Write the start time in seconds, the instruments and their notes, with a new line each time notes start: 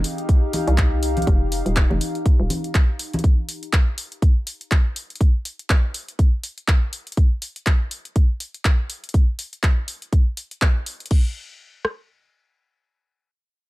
Already playing: ambient pad C4 D#4 G4 D#5 F5 A#5
0.04 open hi-hat
0.18 closed hi-hat
0.29 kick, closed hi-hat
0.53 open hi-hat, high bongo, high conga
0.67 fm bass C2, closed hi-hat
0.78 kick, clap, closed hi-hat
1.03 open hi-hat
1.17 closed hi-hat, high conga
1.22 closed hi-hat
1.27 fm bass F1, kick, closed hi-hat
1.52 open hi-hat
1.66 fm bass D#1, closed hi-hat
1.76 kick, clap, closed hi-hat
1.90 fm bass F1, high conga
2.01 open hi-hat
2.15 closed hi-hat
2.26 kick, closed hi-hat
2.40 fm bass D#1
2.50 open hi-hat, high conga
2.64 closed hi-hat
2.75 kick, clap, closed hi-hat
2.99 open hi-hat
3.13 closed hi-hat, high bongo, high conga
3.19 closed hi-hat
3.24 kick, closed hi-hat
3.49 open hi-hat
3.63 closed hi-hat
3.73 kick, clap, closed hi-hat
3.98 open hi-hat
4.12 closed hi-hat
4.22 kick, closed hi-hat
4.47 open hi-hat
4.61 closed hi-hat
4.71 kick, clap, closed hi-hat
4.96 open hi-hat
5.10 closed hi-hat
5.16 closed hi-hat
5.21 kick, closed hi-hat
5.45 open hi-hat
5.59 closed hi-hat
5.70 kick, clap, closed hi-hat
5.94 open hi-hat
6.08 closed hi-hat
6.19 kick, closed hi-hat
6.44 open hi-hat
6.58 closed hi-hat
6.68 kick, clap, closed hi-hat
6.93 open hi-hat
7.07 closed hi-hat
7.12 closed hi-hat
7.17 kick, closed hi-hat
7.42 open hi-hat
7.56 closed hi-hat
7.66 kick, clap, closed hi-hat
7.91 open hi-hat
8.05 closed hi-hat
8.16 kick, closed hi-hat
8.40 open hi-hat
8.54 closed hi-hat
8.65 kick, clap, closed hi-hat
8.90 open hi-hat
9.04 closed hi-hat
9.09 closed hi-hat
9.14 kick, closed hi-hat
9.39 open hi-hat
9.53 closed hi-hat
9.63 kick, clap, closed hi-hat
9.88 open hi-hat
10.02 closed hi-hat
10.13 kick, closed hi-hat
10.37 open hi-hat
10.51 closed hi-hat
10.62 kick, clap, closed hi-hat
10.86 open hi-hat
11.00 closed hi-hat
11.06 closed hi-hat
11.11 kick, crash
11.85 cross-stick